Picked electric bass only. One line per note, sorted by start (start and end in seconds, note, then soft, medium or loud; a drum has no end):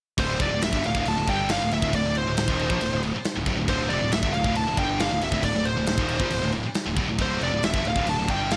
0.18 0.38 D1 loud
0.40 0.50 F1 medium
0.52 0.62 D1 medium
0.63 0.72 D1 medium
0.73 0.83 G1 medium
0.85 0.94 D1 medium
0.95 1.05 D1 medium
1.06 1.16 D1 medium
1.18 1.27 D1 medium
1.28 1.58 G1 medium
1.62 1.72 D1 medium
1.72 1.82 D1 medium
1.83 1.93 D1 medium
1.94 2.04 D1 loud
2.06 2.26 D1 medium
2.28 2.47 D1 medium
2.48 2.69 D#1 medium
2.70 2.80 A#1 loud
2.82 2.92 D1 medium
2.93 3.03 D1 medium
3.04 3.14 D1 medium
3.15 muted picked electric bass stroke soft
3.37 3.46 D1 medium
3.46 3.57 D1 loud
3.59 3.68 D1 medium
3.68 3.89 D1 loud
3.91 4.01 F1 loud
4.02 4.12 D1 medium
4.13 4.22 D1 medium
4.23 4.34 G1 medium
4.35 4.44 D1 medium
4.45 4.55 D1 loud
4.57 4.67 D1 medium
4.69 4.77 D1 medium
4.77 5.08 G1 medium
5.12 5.22 D1 medium
5.23 5.31 D1 medium
5.32 5.42 D1 loud
5.43 5.54 D1 medium
5.56 5.76 D1 medium
5.77 5.97 D1 medium
5.97 6.19 D#1 loud
6.20 6.30 A#1 medium
6.33 6.42 D1 medium
6.43 6.53 D1 medium
6.54 6.64 D1 medium
6.65 muted picked electric bass stroke soft
6.87 6.96 D1 medium
6.96 7.07 D1 loud
7.09 7.18 D1 medium
7.19 7.39 D1 loud
7.41 7.51 F1 loud
7.52 7.62 D1 medium
7.63 7.73 D1 medium
7.74 7.84 G1 medium
7.85 7.95 D1 medium
7.96 8.06 D1 medium
8.07 8.17 D1 medium
8.18 8.28 D1 medium
8.29 8.57 G1 medium